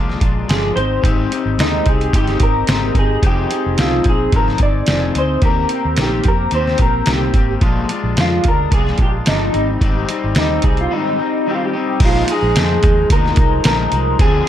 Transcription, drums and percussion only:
0.10 snare
0.21 kick, closed hi-hat
0.49 snare, closed hi-hat
0.77 closed hi-hat
1.04 kick, closed hi-hat
1.32 closed hi-hat
1.59 snare, closed hi-hat
1.86 kick, closed hi-hat
2.01 closed hi-hat
2.13 kick, closed hi-hat
2.28 snare, closed hi-hat
2.40 kick, closed hi-hat
2.67 snare, closed hi-hat
2.95 kick, closed hi-hat
3.23 kick, closed hi-hat
3.51 closed hi-hat
3.78 snare, closed hi-hat
4.04 kick, closed hi-hat
4.32 kick, closed hi-hat
4.48 snare
4.58 kick, closed hi-hat
4.86 snare, closed hi-hat
5.15 closed hi-hat
5.42 kick, closed hi-hat
5.69 closed hi-hat
5.97 snare, closed hi-hat
6.24 kick, closed hi-hat
6.51 closed hi-hat
6.67 snare
6.78 kick, closed hi-hat
7.06 snare, closed hi-hat
7.34 kick, closed hi-hat
7.61 kick, closed hi-hat
7.89 closed hi-hat
8.17 snare, closed hi-hat
8.44 kick, closed hi-hat
8.72 kick, closed hi-hat
8.87 snare
8.98 kick, closed hi-hat
9.26 snare, closed hi-hat
9.54 closed hi-hat
9.81 kick, closed hi-hat
10.09 closed hi-hat
10.35 snare, closed hi-hat
10.62 kick, closed hi-hat
10.77 closed hi-hat
12.00 kick, closed hi-hat, crash
12.28 closed hi-hat
12.56 snare, closed hi-hat
12.83 kick, closed hi-hat
13.10 kick, closed hi-hat
13.26 snare
13.36 kick, closed hi-hat
13.64 snare, closed hi-hat
13.92 closed hi-hat
14.19 kick, closed hi-hat

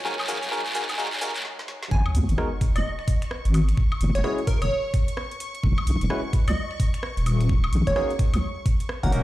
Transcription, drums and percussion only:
0.05 clap, shaker
0.12 clap
0.20 clap, high woodblock, shaker
0.24 clap, shaker
0.28 clap, open hi-hat
0.36 clap
0.43 clap, closed hi-hat, shaker
0.47 clap
0.52 clap, shaker
0.59 clap
0.65 clap, closed hi-hat, shaker
0.70 clap, shaker
0.75 clap, open hi-hat
0.82 clap
0.89 clap, closed hi-hat, high woodblock, shaker
0.94 clap
0.98 clap, shaker
1.05 clap
1.12 clap, closed hi-hat, shaker
1.17 clap, shaker
1.22 clap, open hi-hat
1.29 clap
1.35 clap, closed hi-hat, shaker
1.40 clap
1.45 snare
1.59 snare
1.68 snare
1.83 snare
1.91 kick
2.06 high woodblock
2.15 open hi-hat
2.29 closed hi-hat
2.38 cross-stick
2.61 kick, open hi-hat
2.76 closed hi-hat, high woodblock
2.99 finger snap
3.08 kick, open hi-hat
3.22 finger snap, closed hi-hat
3.31 cross-stick
3.45 closed hi-hat
3.54 open hi-hat, high woodblock
3.69 finger snap, closed hi-hat
3.77 kick
3.92 high woodblock
4.01 open hi-hat
4.15 finger snap, closed hi-hat
4.24 cross-stick
4.38 closed hi-hat
4.47 finger snap, kick, open hi-hat
4.62 closed hi-hat, high woodblock
4.94 kick, open hi-hat
5.08 closed hi-hat
5.17 cross-stick
5.31 closed hi-hat
5.40 open hi-hat
5.55 closed hi-hat
5.64 kick
5.78 high woodblock
5.87 open hi-hat
6.01 closed hi-hat
6.10 cross-stick
6.33 kick, open hi-hat
6.48 closed hi-hat, high woodblock
6.71 finger snap
6.80 kick, open hi-hat
6.94 finger snap, closed hi-hat
7.03 cross-stick
7.17 closed hi-hat
7.26 open hi-hat, high woodblock
7.41 finger snap, closed hi-hat
7.49 kick
7.64 high woodblock
7.73 open hi-hat
7.87 finger snap, kick, closed hi-hat
7.96 cross-stick
8.10 closed hi-hat
8.19 finger snap, kick, open hi-hat
8.34 closed hi-hat, high woodblock
8.66 kick, open hi-hat
8.80 closed hi-hat
8.89 cross-stick
9.03 kick, closed hi-hat
9.12 open hi-hat

